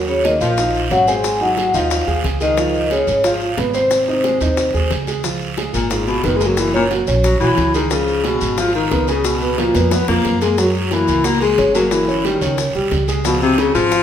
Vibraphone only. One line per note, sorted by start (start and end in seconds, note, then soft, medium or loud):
0.08 0.23 C#5 medium
0.25 0.40 D#5 medium
0.41 0.92 F5 medium
0.92 1.08 F#5 loud
1.08 1.42 G#5 loud
1.42 1.72 F#5 medium
1.75 2.21 F5 medium
2.42 2.88 D#5 loud
2.92 3.26 C#5 medium
3.25 3.56 F5 medium
3.75 4.87 C5 medium